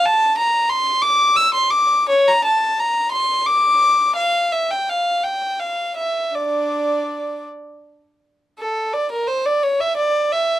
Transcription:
X:1
M:6/8
L:1/16
Q:3/8=57
K:Dm
V:1 name="Violin"
a2 b2 c'2 d'2 e' c' d'2 | ^c b a2 b2 =c'2 d'4 | f2 e g f2 g2 f2 e2 | [Dd]6 z6 |
A2 d B c d ^c e d2 e2 |]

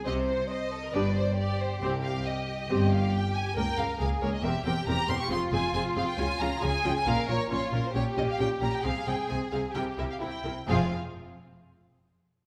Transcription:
X:1
M:4/4
L:1/16
Q:1/4=136
K:Fm
V:1 name="Violin section"
e2 c2 c2 =A B =B2 c2 =d2 c2 | c2 f2 e6 f2 g2 a2 | g2 f2 f2 d e =e2 g2 b2 c' d' | c'2 a2 a2 f g a2 b2 a2 g a |
f2 d2 d2 B c d2 e f g2 b g | f2 g2 a2 f2 g2 =e f g4 | f2 z12 z2 |]
V:2 name="Violin section"
c4 e4 =d4 G4- | G8 G8 | B4 A4 G8 | F12 A4 |
B4 F4 G8 | A8 G4 =E2 z2 | [FA]2 z12 z2 |]
V:3 name="Viola section"
[CG]2 z6 [=DG]2 z6 | [CG]2 z6 [CG]2 z6 | [B,B]2 [B,B]2 [B,B]2 [B,B]2 [CB]2 [CB]2 [CB]2 [CB]2 | [CA]2 [CA]2 [CA]2 [CA]2 [DF]2 [DF]2 [DF]2 [DF]2 |
[DF]2 [DF]2 [DF]2 [DF]2 [DG]2 [DG]2 [DG]2 [DG]2 | [CA]2 [CA]2 [CA]2 [CA]2 [=EB]2 [EB]2 [EB]2 [EB]2 | [F,C]2 z12 z2 |]
V:4 name="Cello section" clef=bass
C,4 z4 G,,4 z4 | C,,4 z4 G,,4 z4 | D,,2 D,,2 D,,2 D,,2 =E,,2 E,,2 E,,2 E,,2 | F,,2 F,,2 F,,2 F,,2 D,2 D,2 D,2 D,2 |
B,,2 B,,2 B,,2 B,,2 B,,2 B,,2 B,,2 B,,2 | C,2 C,2 C,2 C,2 C,2 C,2 C,2 C,2 | F,,2 z12 z2 |]
V:5 name="Double bass section" clef=bass
C,,4 z4 G,,,4 z4 | C,,4 z4 G,,,4 z4 | D,,2 D,,2 D,,2 D,,2 =E,,,2 E,,,2 E,,,2 E,,,2 | F,,,2 F,,,2 F,,,2 F,,,2 D,,2 D,,2 D,,2 D,,2 |
B,,,2 B,,,2 B,,,2 B,,,2 B,,,2 B,,,2 B,,,2 B,,,2 | C,,2 C,,2 C,,2 C,,2 C,,2 C,,2 C,,2 C,,2 | F,,,2 z12 z2 |]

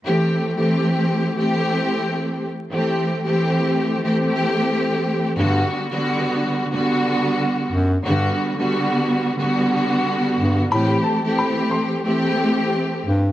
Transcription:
X:1
M:4/4
L:1/16
Q:"Swing 16ths" 1/4=90
K:Ador
V:1 name="Upright piano"
z16 | z16 | z16 | z16 |
b2 a2 b2 c'3 z6 z |]
V:2 name="String section"
[E,A,CG]3 [E,A,CG]4- [E,A,CG] [E,A,CG]6 z2 | [E,A,CG]3 [E,A,CG]4- [E,A,CG] [E,A,CG]6- [E,A,CG] z | [D,G,B,F]3 [D,G,B,F]4- [D,G,B,F] [D,G,B,F]6 z2 | [D,G,B,F]3 [D,G,B,F]4- [D,G,B,F] [D,G,B,F]6- [D,G,B,F] z |
[E,A,CG]3 [E,A,CG]4- [E,A,CG] [E,A,CG]6 z2 |]
V:3 name="Bass clarinet" clef=bass
z16 | z16 | G,,2 z12 F,,2 | G,,2 z12 G,,2 |
A,,2 z12 G,,2 |]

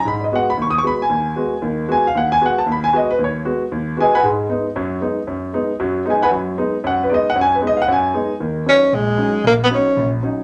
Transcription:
X:1
M:4/4
L:1/16
Q:"Swing" 1/4=230
K:G#m
V:1 name="Grand piano"
b2 [=d^d]2 f2 b2 (3c'2 d'2 c'2 b2 g2- | g8 z4 g2 ^e2 | f2 g2 f2 =a2 b2 g2 d2 B2 | c2 z8 z2 [GBdg]2 [Bfgb]2 |
z16 | z12 [GBdg]2 [Bfgb]2 | z8 f2 B2 [=d^d]2 f2 | g2 B2 d2 [^ef]2 g6- g z |
[K:Ebm] z16 | z16 |]
V:2 name="Grand piano" clef=bass
G,,4 [G,B,F]2 z2 D,,4 [G,B,F]2 z2 | D,,4 [G,B,F]2 z2 [D,,D,]4 [G,B,F]2 z2 | D,,4 [G,B,F]2 z2 D,,4 [G,B,F]2 z2 | D,,4 [G,B,F]2 z2 D,,4 [G,B,F]2 z2 |
[G,,G,]4 [G,B,D]2 z2 [F,,F,]4 [G,B,D]2 z2 | F,,4 [G,B,D]2 z2 [F,,F,]4 [G,B,D]2 z2 | [F,,F,]4 [G,B,D]2 z2 F,,4 [G,B,D]2 z2 | F,,4 [G,B,D]2 z2 F,,4 [G,B,D]2 z2 |
[K:Ebm] [E,,E,]4 [G,DE]2 z2 B,,,4 [G,DE]2 z2 | B,,,4 [G,DE]2 z2 B,,,4 [G,DE]2 z2 |]
V:3 name="Tenor saxophone"
z16 | z16 | z16 | z16 |
z16 | z16 | z16 | z16 |
[K:Ebm] z4 D4 A,8 | B,2 C2 D6 z6 |]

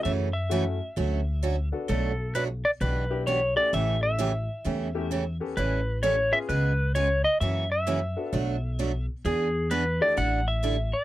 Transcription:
X:1
M:4/4
L:1/8
Q:"Swing" 1/4=130
K:Amix
V:1 name="Electric slide guitar"
e e6 z | A2 B d B2 c d | e e6 z | B2 c e B2 c _e |
e e6 z | ^G2 B d f e2 d |]
V:2 name="Upright piano"
z2 [A,CEF] z4 [B,DFA] | z4 z [B,DEG] z [A,CEG]- | [A,CEG]2 z3 [A,CEG] z [B,CGA] | z3 [B,C=F^G] z4 |
z3 [B,DFA] z4 | z3 [A,DEG] z4 |]
V:3 name="Steel-string acoustic guitar"
[C,E,A,CF] z [C,E,A,CF] z [D,F,A,CF] z [D,F,A,CF] z | [B,,F,A,DF] z [B,,F,A,DF] z [B,,E,B,DG] z [B,,E,B,DG] z | [C,E,A,CG] z [C,E,A,CG] z [C,E,A,CG] z [C,E,A,CG] z | [E,G,CEA] z [E,G,CEA] z [C,^G,B,^E^G] z [C,G,B,EG] z |
[C,E,^A,CF] z [C,E,A,CF] z [B,,F,=A,DF] z [B,,F,A,DF] z | [E,B,D^G] z [E,B,DG] z [D,=G,DEA] z [D,G,DEA] z |]
V:4 name="Upright bass" clef=bass
F,,4 D,,4 | B,,,4 B,,,4 | A,,,4 E,,4 | A,,,4 C,,4 |
F,,4 B,,,4 | E,,4 A,,,4 |]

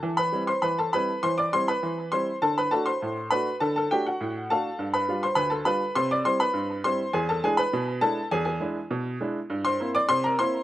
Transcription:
X:1
M:2/4
L:1/16
Q:1/4=101
K:C
V:1 name="Upright piano"
A [Bb]2 [cc'] [Bb] [Aa] [Bb]2 | [cc'] [dd'] [cc'] [Bb]3 [cc']2 | [Aa] [Bb] [Aa] [cc']3 [Bb]2 | [Aa] [Aa] [Gg] [^F^f]3 [A=fa]2- |
[Afa] [Bb]2 [cc'] [Bb] [Aa] [Bb]2 | [cc'] [dd'] [cc'] [Bb]3 [cc']2 | [^G^g] [Aa] [Gg] [Bb]3 [Aa]2 | [^G^g] [Gg] z6 |
[K:Cmix] z [cc']2 [dd'] [cc'] [Bb] [cc']2 |]
V:2 name="Upright piano"
E,2 [G,CE]2 E,2 [G,CE]2 | E,2 [G,CE]2 E,2 [G,CE]2 | D,2 [A,D^F]2 A,,2 [A,DF]2 | D,2 [A,D^F]2 A,,2 [A,DF]2 |
G,,2 [G,DF]2 D,,2 [G,DF]2 | C,2 [G,CE]2 G,,2 [G,CE]2 | E,,2 [^G,DE]2 B,,2 [G,DE]2 | E,,2 [^G,DE]2 B,,2 [G,DE]2 |
[K:Cmix] G,,2 [B,CE]2 C,2 [B,CE]2 |]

